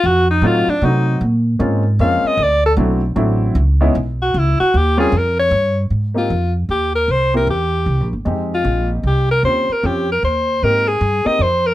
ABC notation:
X:1
M:3/4
L:1/16
Q:"Swing" 1/4=153
K:Ab
V:1 name="Alto saxophone"
_G2 E2 F2 =D2 E4 | z8 f2 e2 | =d2 =A2 z8 | z6 _G2 _F2 G2 |
G2 A2 B2 d4- d z | z2 F4 z2 G2 B2 | c2 B2 G6 z2 | z2 F4 z2 G2 B2 |
c2 B2 G2 B2 c4 | B2 A4 e2 c2 B2 |]
V:2 name="Grand piano"
z4 [_G,=A,CEF]2 z2 [G,A,CE_G]4 | z4 [A,B,CDF]2 z2 [A,B,CDF]4 | z4 [^F,=A,C=D=E]2 z2 [F,A,CDE]4 | z2 [A,_CDE_F]2 z8 |
z2 [G,B,CDF]2 z8 | z2 [B,CEG]2 z8 | z2 [B,C=EG]2 z8 | [A,CEG]8- [A,CEG]2 z2 |
[CDFG]2 z2 [CDFG]2 z6 | [B,CEG]2 z4 [B,CEG]2 z4 |]
V:3 name="Upright bass" clef=bass
F,,4 =A,,2 z2 C,4 | B,,4 A,,4 F,,2 z2 | =D,,4 _C,,4 =A,,,4 | D,,4 _C,,4 D,,2 z2 |
E,,4 F,,4 G,,4 | A,,4 F,,4 E,,4 | C,,4 =E,,4 (3C,,2 B,,,2 G,,,2 | F,,4 B,,,4 C,,4 |
E,,2 z2 F,,4 E,,4 | A,,4 G,,2 z2 F,,4 |]